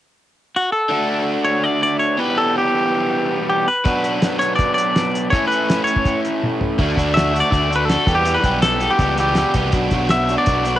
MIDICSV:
0, 0, Header, 1, 5, 480
1, 0, Start_track
1, 0, Key_signature, 2, "major"
1, 0, Tempo, 368550
1, 1171, Time_signature, 4, 2, 24, 8
1, 14056, End_track
2, 0, Start_track
2, 0, Title_t, "Clean electric guitar"
2, 0, Program_c, 0, 27
2, 736, Note_on_c, 0, 66, 74
2, 939, Note_off_c, 0, 66, 0
2, 944, Note_on_c, 0, 69, 74
2, 1607, Note_off_c, 0, 69, 0
2, 1881, Note_on_c, 0, 73, 79
2, 2130, Note_off_c, 0, 73, 0
2, 2130, Note_on_c, 0, 74, 87
2, 2366, Note_off_c, 0, 74, 0
2, 2382, Note_on_c, 0, 74, 81
2, 2591, Note_off_c, 0, 74, 0
2, 2597, Note_on_c, 0, 73, 77
2, 2860, Note_off_c, 0, 73, 0
2, 2860, Note_on_c, 0, 71, 78
2, 3096, Note_on_c, 0, 69, 83
2, 3102, Note_off_c, 0, 71, 0
2, 3340, Note_off_c, 0, 69, 0
2, 3358, Note_on_c, 0, 67, 78
2, 4535, Note_off_c, 0, 67, 0
2, 4551, Note_on_c, 0, 67, 71
2, 4787, Note_off_c, 0, 67, 0
2, 4790, Note_on_c, 0, 71, 80
2, 5714, Note_off_c, 0, 71, 0
2, 5719, Note_on_c, 0, 73, 76
2, 5927, Note_off_c, 0, 73, 0
2, 5932, Note_on_c, 0, 74, 86
2, 6159, Note_off_c, 0, 74, 0
2, 6175, Note_on_c, 0, 74, 75
2, 6900, Note_off_c, 0, 74, 0
2, 6905, Note_on_c, 0, 73, 80
2, 7124, Note_off_c, 0, 73, 0
2, 7129, Note_on_c, 0, 71, 78
2, 7600, Note_off_c, 0, 71, 0
2, 7605, Note_on_c, 0, 73, 71
2, 8071, Note_off_c, 0, 73, 0
2, 9300, Note_on_c, 0, 76, 87
2, 9635, Note_off_c, 0, 76, 0
2, 9641, Note_on_c, 0, 74, 81
2, 10096, Note_off_c, 0, 74, 0
2, 10101, Note_on_c, 0, 71, 76
2, 10226, Note_off_c, 0, 71, 0
2, 10226, Note_on_c, 0, 69, 75
2, 10613, Note_on_c, 0, 67, 76
2, 10629, Note_off_c, 0, 69, 0
2, 10870, Note_on_c, 0, 71, 77
2, 10878, Note_off_c, 0, 67, 0
2, 11225, Note_off_c, 0, 71, 0
2, 11231, Note_on_c, 0, 69, 78
2, 11598, Note_on_c, 0, 67, 70
2, 11610, Note_off_c, 0, 69, 0
2, 11937, Note_off_c, 0, 67, 0
2, 11983, Note_on_c, 0, 67, 62
2, 12422, Note_off_c, 0, 67, 0
2, 13162, Note_on_c, 0, 76, 92
2, 13517, Note_off_c, 0, 76, 0
2, 13522, Note_on_c, 0, 74, 82
2, 14020, Note_off_c, 0, 74, 0
2, 14056, End_track
3, 0, Start_track
3, 0, Title_t, "Overdriven electric guitar"
3, 0, Program_c, 1, 29
3, 1155, Note_on_c, 1, 50, 65
3, 1177, Note_on_c, 1, 57, 68
3, 1180, Note_on_c, 1, 62, 74
3, 1192, Note_on_c, 1, 66, 79
3, 2828, Note_off_c, 1, 50, 0
3, 2829, Note_on_c, 1, 40, 73
3, 2833, Note_on_c, 1, 47, 78
3, 2839, Note_off_c, 1, 57, 0
3, 2841, Note_off_c, 1, 62, 0
3, 2847, Note_off_c, 1, 66, 0
3, 2849, Note_on_c, 1, 52, 78
3, 2855, Note_on_c, 1, 55, 82
3, 2861, Note_on_c, 1, 59, 78
3, 2872, Note_on_c, 1, 67, 83
3, 4745, Note_off_c, 1, 40, 0
3, 4747, Note_off_c, 1, 47, 0
3, 4755, Note_off_c, 1, 52, 0
3, 4758, Note_off_c, 1, 55, 0
3, 4761, Note_off_c, 1, 59, 0
3, 4766, Note_off_c, 1, 67, 0
3, 5005, Note_on_c, 1, 47, 71
3, 5021, Note_on_c, 1, 54, 82
3, 5028, Note_on_c, 1, 59, 78
3, 5040, Note_on_c, 1, 62, 80
3, 5047, Note_on_c, 1, 66, 73
3, 6912, Note_off_c, 1, 47, 0
3, 6920, Note_off_c, 1, 54, 0
3, 6923, Note_off_c, 1, 59, 0
3, 6929, Note_off_c, 1, 62, 0
3, 6929, Note_on_c, 1, 45, 76
3, 6933, Note_off_c, 1, 66, 0
3, 6942, Note_on_c, 1, 52, 84
3, 6945, Note_on_c, 1, 57, 75
3, 6958, Note_on_c, 1, 61, 81
3, 6965, Note_on_c, 1, 64, 83
3, 8824, Note_off_c, 1, 57, 0
3, 8826, Note_off_c, 1, 52, 0
3, 8832, Note_on_c, 1, 50, 82
3, 8833, Note_off_c, 1, 45, 0
3, 8840, Note_on_c, 1, 57, 87
3, 8843, Note_off_c, 1, 64, 0
3, 8844, Note_off_c, 1, 61, 0
3, 8848, Note_on_c, 1, 66, 86
3, 8850, Note_on_c, 1, 62, 84
3, 9060, Note_off_c, 1, 50, 0
3, 9065, Note_off_c, 1, 57, 0
3, 9076, Note_off_c, 1, 62, 0
3, 9076, Note_on_c, 1, 50, 73
3, 9081, Note_off_c, 1, 66, 0
3, 9081, Note_on_c, 1, 57, 72
3, 9091, Note_on_c, 1, 62, 71
3, 9096, Note_on_c, 1, 66, 74
3, 9303, Note_off_c, 1, 50, 0
3, 9306, Note_off_c, 1, 57, 0
3, 9310, Note_off_c, 1, 62, 0
3, 9318, Note_off_c, 1, 66, 0
3, 9319, Note_on_c, 1, 50, 69
3, 9321, Note_on_c, 1, 57, 74
3, 9326, Note_on_c, 1, 62, 78
3, 9333, Note_on_c, 1, 66, 72
3, 9523, Note_off_c, 1, 50, 0
3, 9533, Note_off_c, 1, 57, 0
3, 9538, Note_off_c, 1, 66, 0
3, 9539, Note_off_c, 1, 62, 0
3, 9539, Note_on_c, 1, 50, 72
3, 9549, Note_on_c, 1, 57, 75
3, 9553, Note_on_c, 1, 66, 78
3, 9555, Note_on_c, 1, 62, 75
3, 9759, Note_off_c, 1, 50, 0
3, 9771, Note_off_c, 1, 62, 0
3, 9773, Note_off_c, 1, 57, 0
3, 9774, Note_on_c, 1, 50, 81
3, 9777, Note_off_c, 1, 66, 0
3, 9786, Note_on_c, 1, 62, 90
3, 9789, Note_on_c, 1, 57, 83
3, 9792, Note_on_c, 1, 66, 87
3, 10015, Note_off_c, 1, 57, 0
3, 10016, Note_off_c, 1, 50, 0
3, 10018, Note_off_c, 1, 62, 0
3, 10030, Note_off_c, 1, 66, 0
3, 10031, Note_on_c, 1, 50, 71
3, 10031, Note_on_c, 1, 57, 66
3, 10034, Note_on_c, 1, 62, 68
3, 10046, Note_on_c, 1, 66, 77
3, 10260, Note_off_c, 1, 57, 0
3, 10265, Note_off_c, 1, 50, 0
3, 10275, Note_off_c, 1, 66, 0
3, 10276, Note_off_c, 1, 62, 0
3, 10276, Note_on_c, 1, 57, 66
3, 10281, Note_on_c, 1, 50, 59
3, 10290, Note_on_c, 1, 66, 74
3, 10292, Note_on_c, 1, 62, 64
3, 10501, Note_on_c, 1, 40, 81
3, 10506, Note_off_c, 1, 50, 0
3, 10507, Note_off_c, 1, 57, 0
3, 10509, Note_on_c, 1, 47, 86
3, 10512, Note_on_c, 1, 52, 95
3, 10514, Note_off_c, 1, 66, 0
3, 10515, Note_off_c, 1, 62, 0
3, 10521, Note_on_c, 1, 55, 83
3, 10528, Note_on_c, 1, 59, 83
3, 10529, Note_on_c, 1, 67, 98
3, 10717, Note_off_c, 1, 40, 0
3, 10724, Note_off_c, 1, 47, 0
3, 10728, Note_off_c, 1, 52, 0
3, 10731, Note_off_c, 1, 55, 0
3, 10732, Note_on_c, 1, 40, 86
3, 10739, Note_on_c, 1, 47, 80
3, 10744, Note_on_c, 1, 52, 86
3, 10746, Note_on_c, 1, 55, 85
3, 10747, Note_off_c, 1, 67, 0
3, 10757, Note_off_c, 1, 59, 0
3, 10762, Note_on_c, 1, 67, 80
3, 10763, Note_on_c, 1, 59, 84
3, 10978, Note_off_c, 1, 40, 0
3, 10981, Note_off_c, 1, 47, 0
3, 10983, Note_off_c, 1, 52, 0
3, 10994, Note_on_c, 1, 40, 69
3, 10996, Note_on_c, 1, 47, 70
3, 10997, Note_off_c, 1, 55, 0
3, 10999, Note_on_c, 1, 52, 67
3, 11002, Note_off_c, 1, 67, 0
3, 11007, Note_off_c, 1, 59, 0
3, 11012, Note_on_c, 1, 59, 78
3, 11013, Note_on_c, 1, 55, 68
3, 11018, Note_on_c, 1, 67, 80
3, 11211, Note_off_c, 1, 40, 0
3, 11221, Note_off_c, 1, 47, 0
3, 11223, Note_off_c, 1, 52, 0
3, 11226, Note_on_c, 1, 40, 73
3, 11232, Note_off_c, 1, 55, 0
3, 11235, Note_off_c, 1, 67, 0
3, 11236, Note_on_c, 1, 47, 70
3, 11239, Note_on_c, 1, 52, 72
3, 11247, Note_off_c, 1, 59, 0
3, 11248, Note_on_c, 1, 55, 69
3, 11251, Note_on_c, 1, 67, 73
3, 11252, Note_on_c, 1, 59, 74
3, 11446, Note_off_c, 1, 40, 0
3, 11459, Note_off_c, 1, 47, 0
3, 11461, Note_off_c, 1, 52, 0
3, 11462, Note_on_c, 1, 40, 72
3, 11470, Note_off_c, 1, 55, 0
3, 11474, Note_on_c, 1, 47, 76
3, 11477, Note_off_c, 1, 59, 0
3, 11477, Note_on_c, 1, 52, 67
3, 11478, Note_off_c, 1, 67, 0
3, 11482, Note_on_c, 1, 59, 78
3, 11485, Note_on_c, 1, 55, 71
3, 11493, Note_on_c, 1, 67, 76
3, 11690, Note_off_c, 1, 40, 0
3, 11699, Note_off_c, 1, 47, 0
3, 11704, Note_off_c, 1, 55, 0
3, 11705, Note_off_c, 1, 52, 0
3, 11706, Note_on_c, 1, 40, 76
3, 11711, Note_off_c, 1, 59, 0
3, 11714, Note_on_c, 1, 47, 88
3, 11719, Note_on_c, 1, 55, 81
3, 11721, Note_on_c, 1, 52, 89
3, 11726, Note_off_c, 1, 67, 0
3, 11726, Note_on_c, 1, 59, 93
3, 11741, Note_on_c, 1, 67, 82
3, 11952, Note_off_c, 1, 47, 0
3, 11954, Note_off_c, 1, 40, 0
3, 11954, Note_off_c, 1, 52, 0
3, 11962, Note_off_c, 1, 55, 0
3, 11968, Note_on_c, 1, 47, 74
3, 11970, Note_on_c, 1, 40, 67
3, 11970, Note_on_c, 1, 52, 76
3, 11971, Note_off_c, 1, 59, 0
3, 11977, Note_on_c, 1, 55, 76
3, 11981, Note_off_c, 1, 67, 0
3, 11987, Note_on_c, 1, 59, 76
3, 11996, Note_on_c, 1, 67, 75
3, 12185, Note_off_c, 1, 40, 0
3, 12187, Note_off_c, 1, 47, 0
3, 12197, Note_off_c, 1, 52, 0
3, 12199, Note_off_c, 1, 55, 0
3, 12201, Note_on_c, 1, 40, 64
3, 12203, Note_on_c, 1, 47, 65
3, 12204, Note_off_c, 1, 59, 0
3, 12213, Note_off_c, 1, 67, 0
3, 12213, Note_on_c, 1, 52, 69
3, 12214, Note_on_c, 1, 55, 70
3, 12219, Note_on_c, 1, 59, 64
3, 12228, Note_on_c, 1, 67, 67
3, 12419, Note_off_c, 1, 40, 0
3, 12426, Note_off_c, 1, 47, 0
3, 12426, Note_off_c, 1, 52, 0
3, 12435, Note_on_c, 1, 40, 76
3, 12442, Note_on_c, 1, 47, 80
3, 12442, Note_on_c, 1, 52, 75
3, 12443, Note_off_c, 1, 55, 0
3, 12445, Note_off_c, 1, 59, 0
3, 12451, Note_off_c, 1, 67, 0
3, 12459, Note_on_c, 1, 55, 83
3, 12460, Note_on_c, 1, 59, 77
3, 12467, Note_on_c, 1, 67, 89
3, 12660, Note_off_c, 1, 47, 0
3, 12667, Note_off_c, 1, 40, 0
3, 12670, Note_off_c, 1, 52, 0
3, 12675, Note_on_c, 1, 47, 85
3, 12676, Note_off_c, 1, 59, 0
3, 12679, Note_off_c, 1, 55, 0
3, 12679, Note_on_c, 1, 54, 79
3, 12683, Note_off_c, 1, 67, 0
3, 12692, Note_on_c, 1, 59, 83
3, 12700, Note_on_c, 1, 62, 89
3, 12700, Note_on_c, 1, 66, 84
3, 12900, Note_off_c, 1, 47, 0
3, 12912, Note_off_c, 1, 54, 0
3, 12916, Note_off_c, 1, 59, 0
3, 12916, Note_on_c, 1, 47, 67
3, 12927, Note_on_c, 1, 54, 67
3, 12929, Note_off_c, 1, 62, 0
3, 12931, Note_on_c, 1, 59, 78
3, 12933, Note_off_c, 1, 66, 0
3, 12945, Note_on_c, 1, 62, 78
3, 12949, Note_on_c, 1, 66, 75
3, 13142, Note_off_c, 1, 54, 0
3, 13144, Note_off_c, 1, 47, 0
3, 13154, Note_off_c, 1, 62, 0
3, 13158, Note_off_c, 1, 66, 0
3, 13158, Note_on_c, 1, 54, 71
3, 13160, Note_off_c, 1, 59, 0
3, 13160, Note_on_c, 1, 47, 73
3, 13170, Note_on_c, 1, 62, 77
3, 13174, Note_on_c, 1, 66, 74
3, 13175, Note_on_c, 1, 59, 74
3, 13394, Note_off_c, 1, 54, 0
3, 13397, Note_off_c, 1, 47, 0
3, 13402, Note_off_c, 1, 59, 0
3, 13410, Note_on_c, 1, 54, 77
3, 13411, Note_off_c, 1, 62, 0
3, 13413, Note_on_c, 1, 47, 73
3, 13414, Note_off_c, 1, 66, 0
3, 13417, Note_on_c, 1, 59, 65
3, 13427, Note_on_c, 1, 62, 79
3, 13430, Note_on_c, 1, 66, 80
3, 13619, Note_off_c, 1, 47, 0
3, 13634, Note_off_c, 1, 54, 0
3, 13634, Note_on_c, 1, 47, 75
3, 13638, Note_off_c, 1, 59, 0
3, 13643, Note_off_c, 1, 62, 0
3, 13650, Note_on_c, 1, 54, 80
3, 13652, Note_off_c, 1, 66, 0
3, 13654, Note_on_c, 1, 59, 86
3, 13659, Note_on_c, 1, 62, 84
3, 13668, Note_on_c, 1, 66, 97
3, 13859, Note_off_c, 1, 54, 0
3, 13864, Note_off_c, 1, 47, 0
3, 13865, Note_off_c, 1, 59, 0
3, 13875, Note_on_c, 1, 54, 73
3, 13877, Note_off_c, 1, 62, 0
3, 13880, Note_on_c, 1, 47, 68
3, 13881, Note_on_c, 1, 59, 71
3, 13886, Note_off_c, 1, 66, 0
3, 13893, Note_on_c, 1, 62, 75
3, 13901, Note_on_c, 1, 66, 83
3, 14056, Note_off_c, 1, 47, 0
3, 14056, Note_off_c, 1, 54, 0
3, 14056, Note_off_c, 1, 59, 0
3, 14056, Note_off_c, 1, 62, 0
3, 14056, Note_off_c, 1, 66, 0
3, 14056, End_track
4, 0, Start_track
4, 0, Title_t, "Picked electric bass"
4, 0, Program_c, 2, 34
4, 8845, Note_on_c, 2, 38, 74
4, 9034, Note_off_c, 2, 38, 0
4, 9090, Note_on_c, 2, 38, 77
4, 9651, Note_off_c, 2, 38, 0
4, 9800, Note_on_c, 2, 38, 82
4, 10365, Note_off_c, 2, 38, 0
4, 10509, Note_on_c, 2, 40, 87
4, 10891, Note_off_c, 2, 40, 0
4, 10980, Note_on_c, 2, 35, 81
4, 11553, Note_off_c, 2, 35, 0
4, 11714, Note_on_c, 2, 37, 92
4, 12282, Note_off_c, 2, 37, 0
4, 12432, Note_on_c, 2, 36, 80
4, 12671, Note_off_c, 2, 36, 0
4, 12671, Note_on_c, 2, 35, 79
4, 12865, Note_off_c, 2, 35, 0
4, 12917, Note_on_c, 2, 35, 79
4, 13484, Note_off_c, 2, 35, 0
4, 13639, Note_on_c, 2, 35, 83
4, 14056, Note_off_c, 2, 35, 0
4, 14056, End_track
5, 0, Start_track
5, 0, Title_t, "Drums"
5, 5015, Note_on_c, 9, 42, 68
5, 5022, Note_on_c, 9, 36, 97
5, 5145, Note_off_c, 9, 42, 0
5, 5152, Note_off_c, 9, 36, 0
5, 5262, Note_on_c, 9, 42, 48
5, 5392, Note_off_c, 9, 42, 0
5, 5495, Note_on_c, 9, 42, 72
5, 5501, Note_on_c, 9, 38, 95
5, 5626, Note_off_c, 9, 42, 0
5, 5631, Note_off_c, 9, 38, 0
5, 5747, Note_on_c, 9, 42, 55
5, 5878, Note_off_c, 9, 42, 0
5, 5974, Note_on_c, 9, 42, 70
5, 5977, Note_on_c, 9, 36, 83
5, 6104, Note_off_c, 9, 42, 0
5, 6107, Note_off_c, 9, 36, 0
5, 6226, Note_on_c, 9, 42, 53
5, 6356, Note_off_c, 9, 42, 0
5, 6456, Note_on_c, 9, 42, 68
5, 6461, Note_on_c, 9, 38, 87
5, 6586, Note_off_c, 9, 42, 0
5, 6591, Note_off_c, 9, 38, 0
5, 6709, Note_on_c, 9, 42, 55
5, 6839, Note_off_c, 9, 42, 0
5, 6937, Note_on_c, 9, 36, 97
5, 6940, Note_on_c, 9, 42, 73
5, 7067, Note_off_c, 9, 36, 0
5, 7071, Note_off_c, 9, 42, 0
5, 7185, Note_on_c, 9, 42, 52
5, 7315, Note_off_c, 9, 42, 0
5, 7418, Note_on_c, 9, 42, 73
5, 7423, Note_on_c, 9, 38, 98
5, 7548, Note_off_c, 9, 42, 0
5, 7553, Note_off_c, 9, 38, 0
5, 7645, Note_on_c, 9, 42, 52
5, 7766, Note_on_c, 9, 36, 64
5, 7775, Note_off_c, 9, 42, 0
5, 7885, Note_off_c, 9, 36, 0
5, 7885, Note_on_c, 9, 36, 80
5, 7885, Note_on_c, 9, 42, 67
5, 8015, Note_off_c, 9, 36, 0
5, 8015, Note_off_c, 9, 42, 0
5, 8136, Note_on_c, 9, 42, 51
5, 8266, Note_off_c, 9, 42, 0
5, 8377, Note_on_c, 9, 48, 45
5, 8508, Note_off_c, 9, 48, 0
5, 8608, Note_on_c, 9, 43, 65
5, 8738, Note_off_c, 9, 43, 0
5, 8842, Note_on_c, 9, 36, 95
5, 8851, Note_on_c, 9, 49, 83
5, 8973, Note_off_c, 9, 36, 0
5, 8981, Note_off_c, 9, 49, 0
5, 9083, Note_on_c, 9, 36, 67
5, 9105, Note_on_c, 9, 42, 52
5, 9213, Note_off_c, 9, 36, 0
5, 9235, Note_off_c, 9, 42, 0
5, 9337, Note_on_c, 9, 42, 72
5, 9343, Note_on_c, 9, 38, 92
5, 9468, Note_off_c, 9, 42, 0
5, 9473, Note_off_c, 9, 38, 0
5, 9587, Note_on_c, 9, 42, 55
5, 9717, Note_off_c, 9, 42, 0
5, 9797, Note_on_c, 9, 36, 89
5, 9809, Note_on_c, 9, 42, 71
5, 9927, Note_off_c, 9, 36, 0
5, 9939, Note_off_c, 9, 42, 0
5, 10062, Note_on_c, 9, 42, 54
5, 10192, Note_off_c, 9, 42, 0
5, 10282, Note_on_c, 9, 42, 70
5, 10287, Note_on_c, 9, 38, 89
5, 10412, Note_off_c, 9, 42, 0
5, 10417, Note_off_c, 9, 38, 0
5, 10510, Note_on_c, 9, 36, 82
5, 10524, Note_on_c, 9, 42, 55
5, 10641, Note_off_c, 9, 36, 0
5, 10654, Note_off_c, 9, 42, 0
5, 10748, Note_on_c, 9, 42, 77
5, 10878, Note_off_c, 9, 42, 0
5, 10988, Note_on_c, 9, 36, 70
5, 10989, Note_on_c, 9, 42, 54
5, 11119, Note_off_c, 9, 36, 0
5, 11119, Note_off_c, 9, 42, 0
5, 11230, Note_on_c, 9, 42, 75
5, 11236, Note_on_c, 9, 38, 96
5, 11361, Note_off_c, 9, 42, 0
5, 11366, Note_off_c, 9, 38, 0
5, 11466, Note_on_c, 9, 42, 53
5, 11596, Note_off_c, 9, 42, 0
5, 11708, Note_on_c, 9, 36, 91
5, 11711, Note_on_c, 9, 42, 67
5, 11838, Note_off_c, 9, 36, 0
5, 11841, Note_off_c, 9, 42, 0
5, 11949, Note_on_c, 9, 42, 50
5, 12079, Note_off_c, 9, 42, 0
5, 12175, Note_on_c, 9, 42, 64
5, 12180, Note_on_c, 9, 38, 87
5, 12305, Note_off_c, 9, 42, 0
5, 12310, Note_off_c, 9, 38, 0
5, 12422, Note_on_c, 9, 42, 51
5, 12430, Note_on_c, 9, 36, 71
5, 12552, Note_off_c, 9, 42, 0
5, 12560, Note_off_c, 9, 36, 0
5, 12661, Note_on_c, 9, 42, 71
5, 12671, Note_on_c, 9, 36, 101
5, 12792, Note_off_c, 9, 42, 0
5, 12801, Note_off_c, 9, 36, 0
5, 12903, Note_on_c, 9, 42, 49
5, 12912, Note_on_c, 9, 36, 73
5, 13034, Note_off_c, 9, 42, 0
5, 13043, Note_off_c, 9, 36, 0
5, 13141, Note_on_c, 9, 42, 72
5, 13147, Note_on_c, 9, 38, 98
5, 13272, Note_off_c, 9, 42, 0
5, 13277, Note_off_c, 9, 38, 0
5, 13399, Note_on_c, 9, 42, 52
5, 13529, Note_off_c, 9, 42, 0
5, 13624, Note_on_c, 9, 42, 73
5, 13638, Note_on_c, 9, 36, 86
5, 13754, Note_off_c, 9, 42, 0
5, 13769, Note_off_c, 9, 36, 0
5, 13873, Note_on_c, 9, 42, 56
5, 14003, Note_off_c, 9, 42, 0
5, 14056, End_track
0, 0, End_of_file